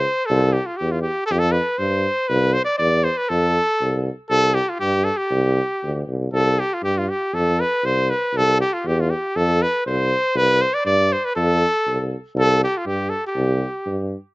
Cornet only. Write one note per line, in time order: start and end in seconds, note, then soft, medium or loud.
0.00 0.28 C5 medium
0.26 0.54 A4 loud
0.53 0.68 G4 medium
0.66 0.79 F4 medium
0.77 0.93 G4 medium
0.91 1.02 F4 medium
1.02 1.25 G4 medium
1.26 1.33 A4 loud
1.32 1.40 G4 medium
1.39 1.53 A4 loud
1.52 1.79 B4 medium
1.78 2.30 C5 medium
2.28 2.55 B4 medium
2.53 2.64 C5 loud
2.65 2.77 D5 medium
2.78 3.05 D5 loud
3.04 3.19 C5 medium
3.17 3.31 B4 medium
3.29 4.06 A4 loud
4.29 4.56 A4 loud
4.54 4.71 G4 loud
4.69 4.79 F4 medium
4.80 5.06 G4 loud
5.04 5.19 A4 medium
5.17 6.06 G4 medium
6.33 6.61 A4 loud
6.59 6.75 G4 medium
6.74 6.83 F4 medium
6.84 6.99 G4 medium
6.98 7.11 F4 medium
7.09 7.36 G4 medium
7.34 7.62 A4 loud
7.60 7.87 B4 medium
7.85 8.11 C5 loud
8.10 8.38 B4 medium
8.37 8.60 A4 loud
8.61 8.75 G4 loud
8.73 8.88 F4 medium
8.87 9.02 G4 medium
9.00 9.12 F4 medium
9.10 9.37 G4 medium
9.36 9.64 A4 loud
9.62 9.86 B4 loud
9.87 10.38 C5 loud
10.37 10.63 B4 loud
10.61 10.76 C5 loud
10.74 10.85 D5 medium
10.85 11.14 D5 loud
11.12 11.27 C5 medium
11.25 11.36 B4 medium
11.36 12.07 A4 loud
12.39 12.61 A4 loud
12.64 12.79 G4 loud
12.77 12.86 F4 medium
12.87 13.11 G4 medium
13.10 13.25 A4 medium
13.27 14.09 G4 medium